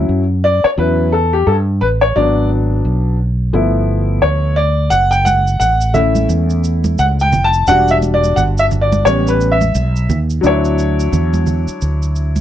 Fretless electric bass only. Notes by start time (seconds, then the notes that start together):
0.09 F#2
0.64 muted fretless electric bass stroke
0.78 E2
1.47 G2
1.81 A1
2.16 G#1
2.85 B1
3.53 G1
4.22 D2
4.91 F#1
5.60 A1
6.29 E2
6.99 C#2
7.33 F1
7.67 E1
8.37 G1
9.06 A1
9.75 B1
10.09 D#2
10.43 D2
11.12 E2
11.68 muted fretless electric bass stroke
11.82 D2